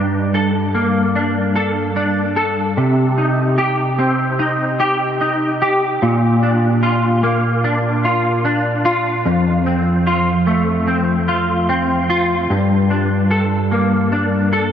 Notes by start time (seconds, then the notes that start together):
Already playing: G2 D4 G4
0.34 A4
0.75 A#3
1.15 D4
1.56 A4
1.96 D4
2.36 A4
2.77 C3
3.18 D#4
3.58 G4
3.99 C4
4.39 D#4
4.80 G4
5.21 D#4
5.62 G4
6.02 A#2
6.43 D4
6.83 F4
7.23 A#3
7.64 D4
8.04 F4
8.45 D4
8.85 F4
9.25 F2
9.66 C4
10.07 F4
10.47 A3
10.87 C4
11.28 F4
11.69 C4
12.10 F4
12.50 G2
12.90 D4
13.31 A4
13.71 A#3
14.12 D4
14.53 A4